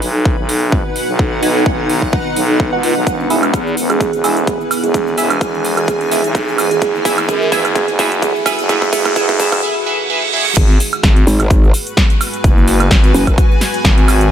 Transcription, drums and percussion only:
0.02 open hi-hat
0.25 kick
0.49 open hi-hat
0.72 kick
0.96 open hi-hat
1.19 kick
1.43 open hi-hat
1.66 kick
1.90 open hi-hat
2.02 kick
2.13 kick
2.36 open hi-hat
2.60 kick
2.83 open hi-hat
3.07 kick, closed hi-hat, shaker
3.20 shaker
3.30 open hi-hat, shaker
3.43 closed hi-hat, high woodblock, shaker
3.54 kick, closed hi-hat, shaker
3.67 shaker
3.77 open hi-hat, shaker
3.90 closed hi-hat, high woodblock, shaker
4.00 kick, closed hi-hat, shaker
4.13 closed hi-hat, shaker
4.24 open hi-hat, shaker
4.37 closed hi-hat, shaker
4.47 kick, closed hi-hat, shaker
4.61 shaker
4.71 open hi-hat, high woodblock, shaker
4.84 closed hi-hat, shaker
4.94 kick, closed hi-hat, shaker
5.08 shaker
5.18 open hi-hat, shaker
5.30 closed hi-hat, high woodblock, shaker
5.41 kick, closed hi-hat, shaker
5.55 shaker
5.65 open hi-hat, shaker
5.77 closed hi-hat, high woodblock, shaker
5.88 kick, closed hi-hat, shaker
6.01 closed hi-hat, shaker
6.11 open hi-hat, shaker
6.24 closed hi-hat, shaker
6.35 kick, closed hi-hat, shaker
6.48 shaker
6.58 open hi-hat, high woodblock, shaker
6.71 closed hi-hat, shaker
6.82 kick, closed hi-hat, shaker
6.95 shaker
7.05 kick, open hi-hat, shaker
7.18 closed hi-hat, high woodblock, shaker
7.29 kick, closed hi-hat, shaker
7.42 shaker
7.52 kick, open hi-hat, shaker
7.65 closed hi-hat, high woodblock, shaker
7.75 kick, closed hi-hat, shaker
7.88 closed hi-hat, shaker
7.99 kick, open hi-hat, shaker
8.12 closed hi-hat, shaker
8.22 kick, closed hi-hat, shaker
8.36 shaker
8.46 kick, open hi-hat, high woodblock, shaker
8.59 closed hi-hat, shaker
8.69 kick, closed hi-hat, shaker
8.82 kick, shaker
8.93 kick, open hi-hat, shaker
9.05 kick, closed hi-hat, high woodblock, shaker
9.16 kick, closed hi-hat, shaker
9.29 kick, closed hi-hat, shaker
9.40 kick, open hi-hat, shaker
9.52 kick, closed hi-hat, high woodblock, shaker
10.57 kick, closed hi-hat, crash, shaker
10.70 shaker
10.80 open hi-hat, shaker
10.93 closed hi-hat, high woodblock, shaker
11.03 kick, snare, closed hi-hat, shaker
11.16 closed hi-hat, shaker
11.27 open hi-hat, shaker
11.40 closed hi-hat, high woodblock, shaker
11.50 kick, closed hi-hat, shaker
11.64 shaker
11.74 open hi-hat, shaker
11.87 closed hi-hat, shaker
11.97 kick, snare, closed hi-hat, shaker
12.10 closed hi-hat, shaker
12.21 open hi-hat, high woodblock, shaker
12.33 closed hi-hat, shaker
12.44 kick, closed hi-hat, shaker
12.58 shaker
12.68 open hi-hat, shaker
12.80 closed hi-hat, high woodblock, shaker
12.91 kick, snare, closed hi-hat, shaker
13.04 closed hi-hat, shaker
13.14 open hi-hat, shaker
13.27 kick, closed hi-hat, high woodblock, shaker
13.38 kick, closed hi-hat, shaker
13.51 shaker
13.61 snare, open hi-hat, shaker
13.74 closed hi-hat, shaker
13.85 kick, snare, closed hi-hat, shaker
13.98 closed hi-hat, shaker
14.08 open hi-hat, high woodblock, shaker
14.21 closed hi-hat, shaker

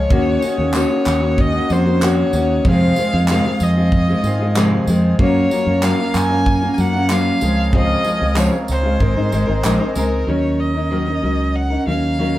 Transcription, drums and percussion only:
0.10 kick
0.42 tambourine
0.74 clap, tambourine
1.06 clap, tambourine
1.38 kick
1.70 tambourine
2.01 clap, tambourine
2.33 tambourine
2.65 kick
2.96 tambourine
3.28 clap, tambourine
3.60 tambourine
3.92 kick
4.24 tambourine
4.55 clap, tambourine
4.87 tambourine
5.19 kick
5.51 tambourine
5.82 clap, tambourine
6.15 clap, tambourine
6.46 kick
6.78 tambourine
7.10 clap, tambourine
7.41 tambourine
7.73 kick
8.04 tambourine
8.36 clap, tambourine
8.68 tambourine
9.00 kick
9.32 tambourine
9.64 clap, tambourine
9.95 tambourine

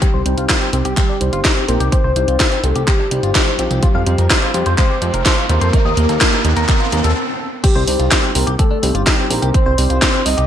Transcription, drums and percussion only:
0.02 kick, closed hi-hat
0.26 closed hi-hat
0.38 closed hi-hat
0.49 kick, snare, clap, closed hi-hat
0.61 closed hi-hat
0.73 closed hi-hat
0.85 closed hi-hat
0.97 kick, clap, closed hi-hat
1.21 closed hi-hat
1.33 closed hi-hat
1.45 kick, snare, clap, closed hi-hat
1.68 closed hi-hat
1.80 closed hi-hat
1.92 kick, closed hi-hat
2.16 closed hi-hat
2.28 closed hi-hat
2.40 kick, snare, clap, closed hi-hat
2.52 closed hi-hat
2.64 closed hi-hat
2.76 closed hi-hat
2.88 kick, clap, closed hi-hat
3.11 closed hi-hat
3.23 closed hi-hat
3.35 kick, snare, clap, closed hi-hat
3.59 closed hi-hat
3.71 closed hi-hat
3.83 kick, closed hi-hat
4.07 closed hi-hat
4.18 closed hi-hat
4.30 kick, snare, clap, closed hi-hat
4.42 closed hi-hat
4.54 closed hi-hat
4.66 closed hi-hat
4.78 kick, clap, closed hi-hat
5.02 closed hi-hat
5.14 closed hi-hat
5.26 kick, snare, clap, closed hi-hat
5.49 closed hi-hat
5.61 closed hi-hat
5.73 kick, closed hi-hat
5.97 closed hi-hat
6.09 closed hi-hat
6.21 kick, snare, clap, closed hi-hat
6.33 closed hi-hat
6.45 closed hi-hat
6.57 closed hi-hat
6.68 kick, clap, closed hi-hat
6.80 closed hi-hat
6.92 closed hi-hat
7.04 closed hi-hat
7.64 kick, closed hi-hat, crash
7.88 open hi-hat
8.00 closed hi-hat
8.11 kick, snare, clap, closed hi-hat
8.23 closed hi-hat
8.35 open hi-hat
8.47 closed hi-hat
8.59 kick, closed hi-hat
8.83 open hi-hat
8.95 closed hi-hat
9.07 kick, snare, clap, closed hi-hat
9.31 open hi-hat
9.43 closed hi-hat
9.54 kick, closed hi-hat
9.78 open hi-hat
9.90 closed hi-hat
10.02 kick, snare, clap, closed hi-hat
10.14 closed hi-hat
10.26 open hi-hat
10.38 closed hi-hat

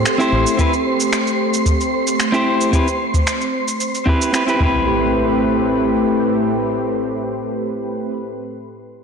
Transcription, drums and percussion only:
0.06 finger snap, cabasa
0.20 cabasa
0.47 cabasa
0.59 kick, cabasa
0.73 cabasa
1.00 cabasa
1.13 finger snap, cabasa
1.27 cabasa
1.54 cabasa
1.66 kick, cabasa
1.81 cabasa
2.07 cabasa
2.20 finger snap, cabasa
2.34 cabasa
2.61 cabasa
2.73 kick, cabasa
2.88 cabasa
3.14 kick, cabasa
3.27 finger snap, cabasa
3.41 cabasa
3.68 cabasa
3.80 cabasa
3.95 cabasa
4.07 kick
4.21 cabasa
4.34 finger snap, cabasa
4.48 cabasa
4.60 kick

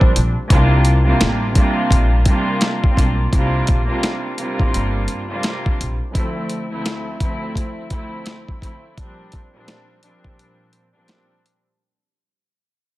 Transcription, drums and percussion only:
0.01 kick
0.16 closed hi-hat
0.50 kick, closed hi-hat
0.85 closed hi-hat
1.21 snare, closed hi-hat
1.55 kick, closed hi-hat
1.91 kick, closed hi-hat
2.25 kick, closed hi-hat
2.61 snare, closed hi-hat
2.84 kick
2.97 kick, closed hi-hat
3.33 kick, closed hi-hat
3.67 kick, closed hi-hat
4.03 snare, closed hi-hat
4.38 closed hi-hat
4.59 kick
4.74 closed hi-hat
5.08 closed hi-hat
5.43 snare, closed hi-hat
5.66 kick
5.81 closed hi-hat
6.15 kick, closed hi-hat
6.49 closed hi-hat
6.86 snare, closed hi-hat
7.20 kick, closed hi-hat
7.55 kick, closed hi-hat
7.90 kick, closed hi-hat
8.26 snare, closed hi-hat
8.48 kick
8.62 kick, closed hi-hat
8.97 kick, closed hi-hat
9.32 kick, closed hi-hat
9.68 snare, closed hi-hat
10.03 closed hi-hat
10.24 kick
10.39 closed hi-hat
10.73 closed hi-hat
11.08 snare, closed hi-hat
11.46 closed hi-hat

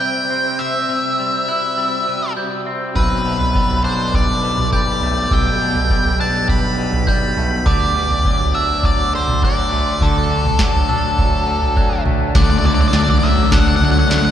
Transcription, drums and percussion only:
2.95 kick, floor tom
3.40 floor tom
3.55 kick
3.70 floor tom
4.14 kick, floor tom
4.58 floor tom, mid tom
4.72 kick
5.01 floor tom
5.31 kick, floor tom
5.75 floor tom
5.90 kick
6.04 floor tom
6.49 kick, floor tom
6.93 floor tom, mid tom
7.07 kick
7.37 floor tom
7.66 kick, floor tom
8.10 floor tom
8.25 kick
8.39 floor tom
8.83 kick, floor tom
9.28 floor tom, mid tom
9.42 kick
9.72 floor tom
10.01 kick, floor tom
10.45 floor tom, mid tom
10.59 kick, snare
10.74 floor tom
10.89 mid tom
11.18 kick, floor tom
11.62 floor tom
11.77 kick
12.06 floor tom, mid tom
12.35 kick, snare, floor tom
12.64 floor tom
12.79 floor tom
12.93 snare
13.08 floor tom
13.23 floor tom
13.38 floor tom
13.52 kick, snare, floor tom
13.81 floor tom
13.96 floor tom
14.11 snare

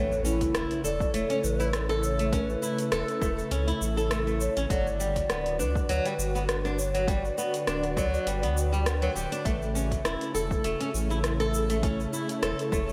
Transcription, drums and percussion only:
0.12 shaker
0.25 shaker
0.41 kick, closed hi-hat, shaker
0.55 cross-stick, closed hi-hat, shaker
0.71 closed hi-hat, shaker
0.85 shaker
1.00 kick, shaker
1.14 closed hi-hat, shaker
1.30 closed hi-hat, shaker
1.44 shaker
1.60 shaker
1.73 cross-stick, closed hi-hat, shaker
1.90 cross-stick, shaker
2.03 shaker
2.19 closed hi-hat, shaker
2.33 kick, closed hi-hat, shaker
2.50 shaker
2.63 shaker
2.79 closed hi-hat, shaker
2.92 cross-stick, closed hi-hat, shaker
3.08 closed hi-hat, shaker
3.22 kick, cross-stick, shaker
3.39 shaker
3.51 closed hi-hat, shaker
3.68 closed hi-hat, shaker
3.82 shaker
3.98 shaker
4.11 cross-stick, closed hi-hat, shaker
4.28 shaker
4.41 shaker
4.57 closed hi-hat, shaker
4.70 kick, closed hi-hat, shaker
4.87 shaker
5.00 shaker
5.16 kick, closed hi-hat, shaker
5.30 cross-stick, closed hi-hat, shaker
5.46 closed hi-hat, shaker
5.60 shaker
5.75 kick, shaker
5.89 closed hi-hat, shaker
6.05 closed hi-hat, shaker
6.19 shaker
6.36 shaker
6.49 cross-stick, closed hi-hat, shaker
6.65 cross-stick, shaker
6.79 shaker
6.95 closed hi-hat, shaker
7.08 kick, closed hi-hat, shaker
7.25 shaker
7.38 shaker
7.54 closed hi-hat, shaker
7.67 cross-stick, closed hi-hat, shaker
7.84 closed hi-hat, shaker
7.97 kick, cross-stick, shaker
8.14 shaker
8.27 closed hi-hat, shaker
8.43 closed hi-hat, shaker
8.57 shaker
8.74 shaker
8.86 cross-stick, closed hi-hat, shaker
9.03 shaker
9.17 shaker
9.32 closed hi-hat, shaker
9.45 kick, closed hi-hat, shaker
9.62 shaker
9.76 shaker
9.91 kick, closed hi-hat, shaker
10.05 cross-stick, closed hi-hat, shaker
10.21 closed hi-hat, shaker
10.35 shaker
10.51 kick, shaker
10.64 closed hi-hat, shaker
10.81 closed hi-hat, shaker
10.95 shaker
11.11 shaker
11.24 cross-stick, closed hi-hat, shaker
11.40 cross-stick, shaker
11.54 shaker
11.70 closed hi-hat, shaker
11.83 kick, closed hi-hat, shaker
12.00 shaker
12.14 shaker
12.29 closed hi-hat, shaker
12.43 cross-stick, closed hi-hat, shaker
12.59 closed hi-hat, shaker
12.72 kick, cross-stick, shaker
12.89 shaker

